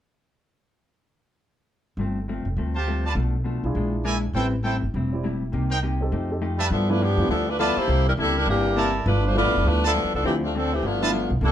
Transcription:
1.97 upright bass G1, hollow-body jazz guitar G2 F3 A3
2.01 hollow-body jazz guitar C4
2.28 hollow-body jazz guitar G2 F3 A3 C4
2.45 upright bass F1
2.57 upright bass D2, hollow-body jazz guitar G2 F3 A3 C4
2.75 trumpet section G4 C5 F5 A5
2.87 hollow-body jazz guitar G2 F3 A3 C4
3.05 trumpet section F4 B4 D5 A5
3.15 upright bass B1, hollow-body jazz guitar B2 F3 A3 D4
3.44 hollow-body jazz guitar B2 F3 A3 D4
3.64 upright bass B1, grand piano D4 E4 F4 G#4
3.75 upright bass A#1, hollow-body jazz guitar A#2 E3 G#3 D4
4.04 hollow-body jazz guitar A#2 E3 G#3 D4, trumpet section E4 A#4 D5 G#5
4.33 upright bass A1, hollow-body jazz guitar A2 G3 C4, grand piano C4 E4 G4 B4, trumpet section E4 A4 C5 G5
4.38 hollow-body jazz guitar E4
4.64 hollow-body jazz guitar A2 G3 C4 E4, trumpet section E4 A4 C5 G5
4.82 upright bass G1
4.94 upright bass E1, hollow-body jazz guitar A2 G3 C4 E4
5.13 grand piano C4 E4 G4 D5
5.24 hollow-body jazz guitar A2 G3 C4 E4
5.52 upright bass C2, hollow-body jazz guitar C3 A#3 D#4 G4
5.70 trumpet section D#4 A#4 C5 G5
5.83 hollow-body jazz guitar C3 A#3 D#4 G4
6.01 grand piano C4 D#4 G4 A4
6.12 upright bass F2, hollow-body jazz guitar F3 A3 D#4 G4
6.31 grand piano C4 D#4 G4 A4
6.42 hollow-body jazz guitar F3 A3 D#4 G4
6.58 trumpet section G3 F4 B4 E5 A5
6.70 upright bass G2, hollow-body jazz guitar G2 F3 B3 E4, saxophone section F3 B3 D4 A4
6.89 grand piano F3 A3 B3 D4 E4, saxophone section A3 D4 F4 B4
7.01 hollow-body jazz guitar G2 F3 B3 E4, saxophone section F3 B3 D4 G4
7.17 upright bass F#2, grand piano F3 A3 B3 D4 E4
7.28 upright bass D2, hollow-body jazz guitar G2 F3 B3 E4, saxophone section F3 B3 D4 A4
7.49 saxophone section A3 D4 F4 B4
7.59 hollow-body jazz guitar G2 F3 B3 E4, saxophone section B3 F4 A4 D5, trumpet section F4 B4 E5 A5
7.76 saxophone section A#3 E4 G4 C5, muted upright bass stroke
7.88 upright bass C2, hollow-body jazz guitar C3 A#3 E4 A4
8.07 saxophone section G3 D4 E4 A#4
8.17 upright bass C#2, hollow-body jazz guitar C3 A#3 E4 A4, saxophone section G3 D4 E4 A4
8.37 saxophone section G3 D4 E4 A#4
8.46 upright bass G1, hollow-body jazz guitar C3 A#3 E4 A4, saxophone section E3 A#3 D4 G4
8.76 hollow-body jazz guitar C3 A#3 E4 A4, trumpet section E4 A#4 D5 A5
9.06 upright bass G1, hollow-body jazz guitar G2 F3 B3 E4, saxophone section A3 D4 F4 B4
9.26 saxophone section A3 D4 F4 C5
9.35 hollow-body jazz guitar G2 F3 B3 E4, grand piano F3 A3 B3 D4 E4, saxophone section B3 F4 A4 D5
9.46 upright bass A1
9.55 upright bass F#1
9.65 upright bass D2, hollow-body jazz guitar G2 F3 B3 E4, saxophone section A3 D4 F4 B4
9.83 saxophone section F3 B3 D4 A4, trumpet section F4 B4 E5 A5
9.95 hollow-body jazz guitar G2 F3 B3 E4
10.04 upright bass E2
10.14 upright bass C#2, saxophone section F3 B3 D4 A4
10.23 upright bass D2, hollow-body jazz guitar D3 A3 C4 F4, saxophone section E3 A3 C4 G4, grand piano F3 A3 C4 D4 E4
10.44 saxophone section A3 C4 D4 F4
10.55 hollow-body jazz guitar D3 A3 C4 F4, saxophone section F3 C4 D4 A4
10.73 saxophone section E3 A3 C4 G4
10.82 upright bass G1, hollow-body jazz guitar G2 F3 B3, saxophone section A3 B3 D4 F4
10.87 hollow-body jazz guitar E4
11.01 grand piano F3 A3 B3 D4 E4, trumpet section F4 B4 E5 A5
11.13 hollow-body jazz guitar G2 F3 B3 E4
11.30 upright bass B1
11.41 upright bass C2, hollow-body jazz guitar C3 A#3 E4 A4, grand piano G3 A3 A#3 D4 E4, saxophone section G3 D4 E4 A4

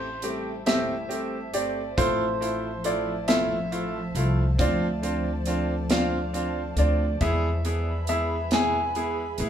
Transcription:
Already playing: upright bass A1, steel-string acoustic guitar C4 E4 A4, ambient pad G4 C5 E5 A5, grand piano C5
0.22 steel-string acoustic guitar G3 C4 E4 A4, upright piano A3 C4 G4, closed hi-hat
0.66 steel-string acoustic guitar A2 G3 C4 E4 A4, upright piano A3 C4 G4, grand piano E5, snare, closed hi-hat
1.09 steel-string acoustic guitar G3 C4 E4, upright piano A3 C4 G4, closed hi-hat
1.13 steel-string acoustic guitar A4
1.53 upright bass G1, upright piano A3 C4 G4, steel-string acoustic guitar C4 E4 A4, grand piano D5, closed hi-hat
1.97 upright bass A1, steel-string acoustic guitar A2 F3 C4 E4 A4, ambient pad F3, upright piano A3 E4 F4, grand piano C5, kick, closed hi-hat
2.40 upright piano A3 E4 F4, steel-string acoustic guitar C4 E4 A4, closed hi-hat
2.84 steel-string acoustic guitar F3 C4 E4 A4, upright piano A3 E4 F4, grand piano D5, closed hi-hat
3.28 steel-string acoustic guitar A2 F3 C4 E4 A4, upright piano A3 E4 F4, grand piano E5, snare, closed hi-hat
3.72 steel-string acoustic guitar F3 C4 E4 A4, upright piano A3 E4 F4, closed hi-hat
4.15 upright bass C2, upright piano A3 E4 F4, steel-string acoustic guitar C4 E4 A4, closed hi-hat
4.58 upright bass D2, steel-string acoustic guitar D3 C4 F4 A4, upright piano C4 D4 F4, ambient pad D5, grand piano D5, kick, closed hi-hat
5.02 upright piano C4 D4 F4, steel-string acoustic guitar C4 F4 A4, closed hi-hat
5.46 steel-string acoustic guitar D3 C4 F4 A4, upright piano C4 D4 F4, closed hi-hat
5.90 steel-string acoustic guitar D3 C4 F4 A4, upright piano C4 D4 F4, grand piano F5, snare, closed hi-hat
6.33 steel-string acoustic guitar D3 C4 A4, upright piano C4 D4 F4, closed hi-hat
6.76 upright bass D2, upright piano C4 D4 F4, steel-string acoustic guitar C4 F4 A4, grand piano D5, closed hi-hat
7.20 steel-string acoustic guitar E2 E3 G#3 B3 E4 G#4, upright bass E2, upright piano B3 E4 G#4, ambient pad G#4 B4 E5 B5, grand piano E5, kick, closed hi-hat
7.64 steel-string acoustic guitar G#3 B3 E4 G#4, upright piano B3 E4 G#4, closed hi-hat
8.07 steel-string acoustic guitar G#3 B3 E4 G#4, upright piano B3 E4 G#4, grand piano E5, closed hi-hat
8.51 steel-string acoustic guitar E2 E3 G#3 B3 E4 G#4, upright piano B3 E4 G#4, grand piano G#5, snare, closed hi-hat
8.95 steel-string acoustic guitar G#3 B3 E4 G#4, upright piano B3 E4 G#4, closed hi-hat
9.38 upright bass A1, steel-string acoustic guitar G#3 B3 E4 G#4, upright piano B3 E4 G#4, closed hi-hat

